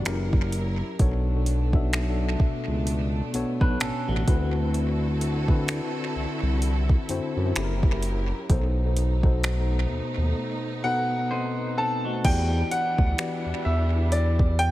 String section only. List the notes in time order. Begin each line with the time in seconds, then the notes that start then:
0.06 F#3 E4 A#4
0.99 A3 B3 D4
4.28 D3 C4 E4 F#4 A4
7.56 F#3 G4 A#4
8.49 A3 B3 D#4
12.24 E3 G3 D4 E4